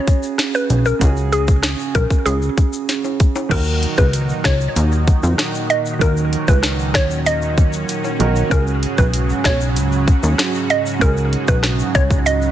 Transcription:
Already playing: C#3 C#4 F#4 G#4 C#5
0.07 kick, closed hi-hat, shaker
0.23 shaker
0.38 cross-stick, snare, closed hi-hat, shaker
0.54 B4, shaker
0.70 B1, closed hi-hat, shaker
0.86 A#4, shaker
0.99 C#2 C#3 C#4 F#4, kick, closed hi-hat, shaker
1.03 G#4
1.17 shaker
1.32 G#4, closed hi-hat, shaker
1.48 kick, shaker
1.63 cross-stick, snare, closed hi-hat, shaker
1.80 shaker
1.95 B1 A#4, kick, closed hi-hat, shaker
2.10 kick, shaker
2.26 C#2 G#4, closed hi-hat, shaker
2.42 shaker
2.58 kick, closed hi-hat, shaker
2.73 shaker
2.89 snare, closed hi-hat, shaker
3.04 high timbale, shaker
3.20 kick, closed hi-hat, shaker
3.36 high timbale, shaker
3.49 D#2 A#2 D#3 F#3 D#4 F#4 A#4, kick, closed hi-hat, crash, shaker
3.53 A#4
3.67 shaker
3.83 closed hi-hat
3.98 C#2 B4, kick, shaker
4.13 closed hi-hat, shaker
4.29 shaker
4.44 C#2 C#5, kick, cross-stick, snare, closed hi-hat, shaker
4.61 shaker
4.76 D#2, closed hi-hat, shaker
4.92 shaker
5.08 kick, closed hi-hat, shaker
5.23 F2, shaker
5.38 cross-stick, snare, closed hi-hat, shaker
5.55 shaker
5.70 D#5, closed hi-hat
5.86 shaker
5.99 D#2 D#3 C#4 D#4 F#4 A#4, kick, closed hi-hat, shaker
6.03 A#4
6.17 shaker
6.33 closed hi-hat
6.48 C#2 B4, kick, shaker
6.63 cross-stick, snare, closed hi-hat, shaker
6.79 shaker
6.94 D#2 C#5, kick, cross-stick, snare, closed hi-hat, shaker
7.11 shaker
7.26 D#5, closed hi-hat, shaker
7.42 shaker
7.58 kick, closed hi-hat, shaker
7.73 shaker
7.89 closed hi-hat, shaker
8.04 high timbale, shaker
8.19 B1 D#3 D#4 F#4 A#4, closed hi-hat
8.36 shaker
8.49 C#2 G#2 C#3 C#4 F#4 A#4, kick, closed hi-hat, shaker
8.53 G#4
8.67 shaker
8.83 closed hi-hat
8.98 B1 B4, kick, shaker
9.13 closed hi-hat, shaker
9.30 shaker
9.44 B1 C#5, kick, cross-stick, snare, closed hi-hat, shaker
9.61 shaker
9.76 C#2, closed hi-hat, shaker
9.92 shaker
10.08 kick, closed hi-hat, shaker
10.23 D#2, shaker
10.38 cross-stick, snare, closed hi-hat, shaker
10.55 shaker
10.70 D#5, closed hi-hat
10.86 shaker
10.99 C#2 C#3 C#4 D#4 F#4 A#4, kick, closed hi-hat, shaker
11.03 G#4
11.17 shaker
11.33 closed hi-hat
11.48 B1 B4, kick, shaker
11.63 cross-stick, snare, closed hi-hat, shaker
11.79 shaker
11.95 C#2 C#5, kick, closed hi-hat, shaker
12.11 kick, shaker
12.26 D#5, closed hi-hat, shaker
12.42 shaker

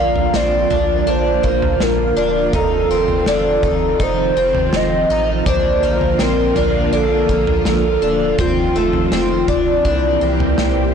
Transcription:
Already playing: A#1 D3 F3 A#3 F4 F5
0.16 floor tom
0.34 A#1 C4 D5, snare
0.70 A#1 D4, floor tom
1.07 A#1 D4 C5
1.43 A#1 A#3, kick
1.62 floor tom
1.80 A#1 A#4, snare
2.17 D#1 D4
2.53 F1 D#3 F3 C4 D#4 A4, kick, floor tom
2.90 F1 C4
3.08 floor tom
3.26 F1 D4 A4, snare
3.63 F1 D#4, kick, floor tom
4.00 F1 D#4 C5, kick
4.36 F1 C4
4.55 floor tom
4.73 F1 D#5, snare
5.10 A1 D#4
5.46 A#1 D3 A#3 D4 F4 C5, kick, floor tom
5.83 A#1 A#3
6.01 floor tom
6.19 A#1 C4 A#4, snare
6.56 A#1 D4, floor tom
6.93 A#1 D4 A4
7.29 A#1 A#3, kick
7.47 floor tom
7.65 A#1 A4, snare
8.02 D#1 D4
8.38 F1 D#3 C4 F4, kick, floor tom
8.75 F1 A3
8.93 floor tom
9.12 F1 C4 F4, snare
9.48 F1 D4, kick, floor tom
9.85 C2 E3 A#3 D4 G4, kick
9.89 E4
10.21 C2 C4
10.40 floor tom
10.58 C2, snare

